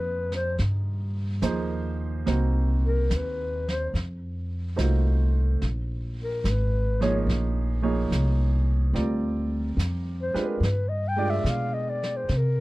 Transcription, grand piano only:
0.00 1.42 F3 soft
0.00 1.42 A#3 soft
0.00 1.43 D#4 soft
0.00 1.43 G#4 soft
0.00 1.43 C5 medium
1.42 1.93 F3 medium
1.42 1.94 A#3 medium
1.42 1.94 D#4 medium
1.42 1.94 G#4 medium
1.42 1.94 C5 medium
2.26 2.77 A#3 soft
2.26 2.78 C4 soft
2.26 2.77 D#4 soft
2.26 2.78 F#4 soft
2.26 2.78 C5 medium
4.76 5.60 A3 soft
4.76 5.60 D#4 soft
4.76 5.61 F4 soft
4.76 5.60 F#4 soft
4.76 5.61 C5 medium
7.01 7.25 F3 medium
7.01 7.25 A#3 soft
7.01 7.26 D#4 soft
7.01 7.26 G#4 medium
7.01 7.26 C#5 medium
7.82 8.08 F3 soft
7.82 8.08 A#3 medium
7.82 8.08 D#4 soft
7.82 8.08 G#4 medium
7.82 8.08 C#5 medium
8.94 10.24 G3 soft
8.94 10.24 C4 soft
8.94 10.24 F4 soft
8.94 10.24 A#4 soft
8.94 10.24 D5 soft
10.34 10.59 G#3 medium
10.34 10.59 D4 medium
10.34 10.59 F4 medium
10.34 10.59 G4 soft
10.34 10.59 B4 medium
11.16 11.42 G#3 medium
11.16 11.43 D4 medium
11.16 11.43 F4 medium
11.16 11.43 G4 medium
11.16 11.43 D5 medium

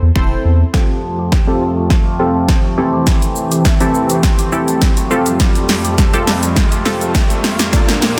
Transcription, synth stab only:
0.15 0.65 C4 medium
0.15 0.65 E4 medium
0.15 0.65 A4 medium
0.15 0.65 C5 medium
0.74 1.35 C4 medium
0.74 1.35 F4 medium
0.74 1.35 G4 medium
0.74 1.35 A4 medium
1.47 2.08 C4 medium
1.47 2.08 F4 medium
1.47 2.09 G4 medium
1.47 2.09 A4 loud
2.19 2.76 C4 medium
2.19 2.78 F4 medium
2.19 2.77 G4 medium
2.19 2.77 A4 loud
2.77 3.63 E3 medium
2.77 3.63 C4 medium
2.77 3.63 E4 medium
2.77 3.63 G4 medium
2.77 3.64 A4 loud
3.80 4.41 E3 medium
3.80 4.42 C4 medium
3.80 4.42 E4 medium
3.80 4.42 G4 medium
3.80 4.42 A4 loud
4.52 5.11 E3 medium
4.52 5.09 C4 medium
4.52 5.11 E4 medium
4.52 5.10 G4 medium
4.52 5.10 A4 loud
5.11 5.96 C4 medium
5.11 5.96 F4 medium
5.11 5.97 G4 medium
5.11 5.97 A4 loud
6.13 6.74 C4 medium
6.13 6.75 F4 medium
6.13 6.75 G4 medium
6.13 6.75 A4 loud
6.85 7.60 C4 medium
6.85 7.60 F4 medium
6.85 7.60 G4 medium
6.85 7.60 A4 loud
7.73 8.19 A#3 medium
7.73 8.19 D4 medium
7.73 8.19 F4 medium
7.73 8.19 A4 medium

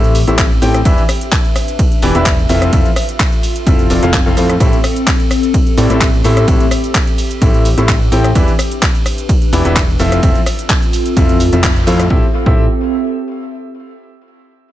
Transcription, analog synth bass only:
0.00 0.25 A1 loud
0.27 0.60 A1 loud
0.62 0.83 A1 medium
0.85 0.98 E1 medium
2.03 2.13 E1 loud
2.15 2.47 E1 loud
2.50 2.71 F1 medium
2.73 2.86 F1 loud
3.67 3.88 F1 loud
3.90 4.00 F1 loud
4.02 4.23 F1 loud
4.26 4.35 F1 loud
4.37 4.58 F2 loud
4.60 4.73 A1 loud
5.78 5.88 A1 loud
5.90 6.22 A1 loud
6.24 6.46 A1 loud
6.48 6.61 A1 loud
7.42 7.75 A1 loud
7.78 8.10 A1 loud
8.12 8.33 A1 loud
8.35 8.48 E1 medium
9.53 9.63 E1 loud
9.65 9.97 E1 loud
9.99 10.21 F1 medium
10.23 10.36 F1 loud
11.17 11.50 F1 loud
11.53 11.85 F1 loud
11.87 12.08 F2 medium
12.10 12.24 A1 loud
12.46 12.68 A1 loud

